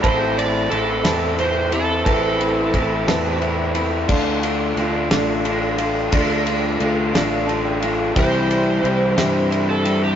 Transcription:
<<
  \new Staff \with { instrumentName = "Grand piano" } { \time 6/8 \key a \minor \tempo 4. = 59 << { r2. | r2 e''8 b''8 | r2. | r2 a''16 g''16 f''8 |
r2. | } \\ { <c'' a'' b''>4~ <c'' a'' b''>16 r16 <c'' a'' b''>4~ <c'' a'' b''>16 r16 | <b' c'' a''>4~ <b' c'' a''>16 r16 <b' c'' a''>4~ <b' c'' a''>16 r16 | <a' d'' f''>4~ <a' d'' f''>16 r16 <a' d'' f''>4~ <a' d'' f''>16 r16 | <a' d'' f''>4~ <a' d'' f''>16 r16 <a' d'' f''>4~ <a' d'' f''>16 r16 |
<g' c'' e''>4~ <g' c'' e''>16 r16 <g' c'' e''>4~ <g' c'' e''>16 r16 | } >> }
  \new Staff \with { instrumentName = "Electric slide guitar" } { \time 6/8 \key a \minor c''8 d''8 a'4 c''8 a'8 | a'2 r4 | r2. | r2. |
c''2~ c''16 a'8 g'16 | }
  \new Staff \with { instrumentName = "Overdriven electric guitar" } { \time 6/8 \key a \minor <a, e a c' e'>8 <a c' e'>8 <e a c' e'>8 <a c' e'>8 <e a c' e'>8 <a c' e'>8 | <a, e a c' e'>8 <a c' e'>8 <e a c' e'>8 <a c' e'>8 <e a c' e'>8 <a c' e'>8 | <d a d' f'>8 <a d' f'>8 <d a d' f'>8 <a d' f'>8 <d a d' f'>8 <a d' f'>8 | <d a d' f'>8 <a d' f'>8 <d a d' f'>8 <a d' f'>8 <d a d' f'>8 <a d' f'>8 |
<c e g c' e'>8 <g c' e'>8 <e g c' e'>8 <g c' e'>8 <e g c' e'>8 <g c' e'>8 | }
  \new Staff \with { instrumentName = "Steel-string acoustic guitar" } { \time 6/8 \key a \minor <a, e c' e'>4 <e c' e'>8 <a, e c' e'>4 <c' e'>8 | <a, e c' e'>4 <e c' e'>8 <a, e c' e'>4 <c' e'>8 | <d a d' f'>4 <d a d' f'>8 <d a d' f'>4 <a d' f'>8 | <d a d' f'>4 <d a d' f'>8 <d a d' f'>4 <a d' f'>8 |
<c e g c' e'>4 <e g c' e'>8 <c e g c' e'>4 <g c' e'>8 | }
  \new Staff \with { instrumentName = "Fingered electric bass" } { \clef bass \time 6/8 \key a \minor a,,4 a,,8 e,4. | a,,4 a,,8 e,4. | d,4 d,8 a,,4. | d,4 d,8 a,,4. |
c,4 c,8 g,4. | }
  \new DrumStaff \with { instrumentName = "Drums" } \drummode { \time 6/8 <bd cymr>8 cymr8 cymr8 <cymr sn>8 cymr8 cymr8 | <bd cymr>8 cymr8 <bd cymr>8 <cymr sn>8 cymr8 cymr8 | <cymc bd>8 cymr8 cymr8 <cymr sn>8 cymr8 cymr8 | <bd cymr>8 cymr8 cymr8 <cymr sn>8 cymr8 cymr8 |
<bd cymr>8 cymr8 cymr8 <cymr sn>8 cymr8 cymr8 | }
>>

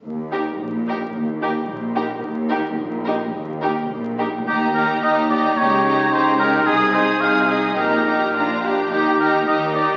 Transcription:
<<
  \new Staff \with { instrumentName = "Violin section" } { \time 2/4 \key ees \major \tempo 4 = 108 r8 bes'8 r8 bes'8 | r8 bes'8 r8 bes'8 | r8 bes'8 r8 bes'8 | r8 bes'8 r8 bes'8 |
bes''8 bes''8 bes''8 bes''8 | bes''8 bes''8 bes''8 bes''8 | ees'''8 ees'''8 ees'''8 ees'''8 | bes''8 bes''8 bes''8 bes''8 |
bes''8 bes''8 bes''8 bes''8 | }
  \new Staff \with { instrumentName = "Oboe" } { \time 2/4 \key ees \major r2 | r2 | r2 | r2 |
g'8 bes'8 ees''8 d''8 | des''4 c''8 bes'8 | aes'8 c''8 f''8 ees''8 | bes'4. r8 |
g'8 bes'8 ees''8 d''8 | }
  \new Staff \with { instrumentName = "Violin section" } { \time 2/4 \key ees \major r8 g'8 r8 g'8 | r8 g'8 r8 g'8 | r8 g'8 r8 g'8 | r8 g'8 r8 g'8 |
g'8 g'8 g'8 g'8 | g'8 g'8 g'8 g'8 | aes'8 aes'8 aes'8 aes'8 | g'8 g'8 f'8 g'8 |
g'8 g'8 g'8 g'8 | }
  \new Staff \with { instrumentName = "Viola section" } { \time 2/4 \key ees \major r8 ees'8 r8 ees'8 | r8 ees'8 r8 ees'8 | r8 ees'8 r8 ees'8 | r8 ees'8 r8 ees'8 |
ees'8 ees'8 ees'8 ees'8 | ees'8 ees'8 ees'8 ees'8 | ees'8 ees'8 ees'8 ees'8 | ees'8 ees'8 d'8 d'8 |
ees'8 ees'8 ees'8 ees'8 | }
  \new Staff \with { instrumentName = "Cello section" } { \clef bass \time 2/4 \key ees \major ees,4 bes,4 | ees,4 bes,4 | ees,4 bes,4 | ees,4 bes,4 |
ees,4 ees,4 | des4 des4 | c4 c4 | bes,4 bes,4 |
ees4 ees4 | }
  \new Staff \with { instrumentName = "Double bass section" } { \clef bass \time 2/4 \key ees \major ees,4 bes,,4 | ees,4 bes,,4 | ees,4 bes,,4 | ees,4 bes,,4 |
ees,4 ees,4 | des,4 des,4 | c,4 c,4 | bes,,4 bes,,4 |
ees,4 ees,4 | }
>>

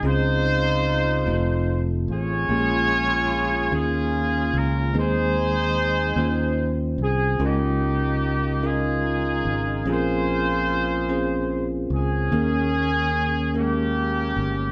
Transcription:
<<
  \new Staff \with { instrumentName = "Horn section" } { \time 6/8 \key ees \mixolydian \tempo 4. = 49 << { c''2 r8 des''8~ | des''4. aes'4 bes'8 | c''2 r8 aes'8 | g'4. aes'4. |
c''2 r8 aes'8~ | aes'4. g'4. | } \\ { <ees' f'>2 r8 <f' aes'>8~ | <f' aes'>4. <des' f'>4. | <ees' aes'>2 r4 | <bes ees'>4. <ees' f'>4. |
<f' aes'>2 r8 des'8~ | des'4. <bes des'>4. | } >> }
  \new Staff \with { instrumentName = "Tine electric piano" } { \time 6/8 \key ees \mixolydian <c' des' ees' f' aes'>4~ <c' des' ees' f' aes'>16 r16 <a c' ees' f' g' a'>4~ <a c' ees' f' g' a'>16 r16 | <aes bes des' f' g' aes'>4~ <aes bes des' f' g' aes'>16 r16 <bes des' ees' f' aes'>4~ <bes des' ees' f' aes'>16 r16 | <aes c' ees' aes' ces'' c''>4~ <aes c' ees' aes' ces'' c''>16 r16 <des' ees' f' c'' g''>4~ <des' ees' f' c'' g''>16 r16 | <aes des' ees' f' bes'>4~ <aes des' ees' f' bes'>16 r16 <des' ees' f' aes' bes'>4~ <des' ees' f' aes' bes'>16 r16 |
<c' des' f' aes' a' bes'>4~ <c' des' f' aes' a' bes'>16 r16 <c' des' f' aes' c''>4~ <c' des' f' aes' c''>16 r16 | <bes des' ees' aes' bes'>4~ <bes des' ees' aes' bes'>16 r16 <aes bes des' ees' g' bes'>4~ <aes bes des' ees' g' bes'>16 r16 | }
  \new Staff \with { instrumentName = "Tine electric piano" } { \clef bass \time 6/8 \key ees \mixolydian des4. r4. | bes,4. ees4. | ees4. ees4. | des4. r4. |
bes,4. r4. | ees4. r4. | }
  \new Staff \with { instrumentName = "Fingered electric bass" } { \clef bass \time 6/8 \key ees \mixolydian des,4. f,,4 a,,8 | bes,,4. ees,4 des,8 | ees,4. ees,4 c,8 | des,2~ des,8 aes,,8 |
bes,,2~ bes,,8 des,8 | ees,2~ ees,8 g,,8 | }
>>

